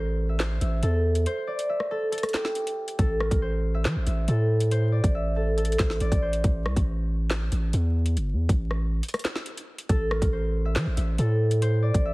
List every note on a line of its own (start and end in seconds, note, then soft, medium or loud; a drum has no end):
0.00 0.58 A1 loud
0.00 0.89 A#4 medium
0.00 0.40 C5 medium
0.00 0.95 D5 medium
0.29 0.60 E5 medium
0.40 1.26 C5 loud
0.40 snare loud
0.40 clap medium
0.40 closed hi-hat medium
0.61 0.82 A1 loud
0.61 1.69 E5 medium
0.61 closed hi-hat medium
0.83 1.26 E2 loud
0.83 1.91 A4 medium
0.83 closed hi-hat medium
1.15 closed hi-hat medium
1.26 3.24 C5 loud
1.26 closed hi-hat medium
1.47 3.32 D5 medium
1.59 closed hi-hat medium
1.69 3.42 E5 medium
1.80 cross-stick medium
1.91 2.11 A4 medium
2.12 2.98 A4 medium
2.12 closed hi-hat medium
2.18 closed hi-hat medium
2.23 cross-stick medium
2.23 closed hi-hat medium
2.29 closed hi-hat medium
2.34 4.70 G4 medium
2.34 snare loud
2.34 clap medium
2.34 closed hi-hat medium
2.45 snare medium
2.55 closed hi-hat medium
2.67 closed hi-hat medium
2.88 closed hi-hat medium
2.99 3.30 A1 loud
2.99 3.27 A4 medium
2.99 kick loud
2.99 closed hi-hat medium
3.20 4.35 A#4 medium
3.20 cross-stick medium
3.31 3.87 A1 loud
3.31 kick medium
3.31 closed hi-hat medium
3.42 3.84 C5 medium
3.75 4.06 E5 medium
3.85 3.97 E3 loud
3.85 4.71 C5 medium
3.85 snare loud
3.85 clap medium
3.85 closed hi-hat medium
3.96 4.06 A1 loud
4.06 4.27 A1 loud
4.06 5.14 E5 medium
4.06 closed hi-hat medium
4.28 5.01 A2 loud
4.28 5.36 A4 medium
4.28 closed hi-hat medium
4.60 closed hi-hat medium
4.71 5.79 C5 loud
4.71 closed hi-hat medium
4.92 6.01 D5 medium
5.04 5.76 A1 loud
5.04 kick medium
5.04 closed hi-hat medium
5.15 6.87 E5 medium
5.36 5.57 A4 medium
5.57 7.77 A4 medium
5.57 closed hi-hat soft
5.65 closed hi-hat medium
5.72 closed hi-hat medium
5.79 6.00 A1 loud
5.79 6.22 C5 medium
5.79 kick loud
5.79 snare loud
5.79 clap medium
5.79 closed hi-hat medium
5.90 snare medium
6.00 6.11 A1 loud
6.00 7.86 D5 medium
6.00 closed hi-hat medium
6.12 6.43 A1 loud
6.12 kick medium
6.12 closed hi-hat medium
6.22 8.20 C5 medium
6.33 closed hi-hat medium
6.44 6.67 A1 loud
6.44 kick loud
6.44 closed hi-hat medium
6.66 6.76 C2 loud
6.66 cross-stick loud
6.76 7.49 A1 loud
6.76 kick medium
6.76 closed hi-hat medium
7.30 snare loud
7.30 clap medium
7.30 closed hi-hat medium
7.52 7.73 A1 loud
7.52 closed hi-hat medium
7.73 8.18 E2 loud
7.73 closed hi-hat medium
8.06 closed hi-hat medium
8.17 8.34 G1 loud
8.17 closed hi-hat medium
8.33 8.48 E2 medium
8.49 9.01 A1 loud
8.49 kick medium
8.49 closed hi-hat medium
8.71 cross-stick medium
9.03 closed hi-hat medium
9.09 closed hi-hat medium
9.14 cross-stick medium
9.14 closed hi-hat medium
9.19 closed hi-hat medium
9.25 snare loud
9.25 clap medium
9.25 closed hi-hat medium
9.36 snare medium
9.46 closed hi-hat medium
9.57 closed hi-hat medium
9.78 closed hi-hat medium
9.89 10.21 A1 loud
9.89 10.17 A4 medium
9.89 kick loud
9.89 closed hi-hat medium
10.11 11.25 A#4 medium
10.11 cross-stick loud
10.22 10.77 A1 loud
10.22 kick medium
10.22 closed hi-hat medium
10.33 10.75 C5 medium
10.65 10.96 E5 medium
10.76 10.88 E3 loud
10.76 11.62 C5 medium
10.76 snare loud
10.76 clap medium
10.76 closed hi-hat medium
10.87 10.97 A1 loud
10.97 11.18 A1 loud
10.97 12.05 E5 medium
10.97 closed hi-hat medium
11.18 11.91 A2 loud
11.18 12.14 A4 medium
11.18 closed hi-hat medium
11.51 closed hi-hat medium
11.62 12.14 C5 loud
11.62 closed hi-hat medium
11.82 12.14 D5 medium
11.94 12.14 A1 loud
11.94 kick medium
11.94 closed hi-hat medium
12.05 12.14 E5 medium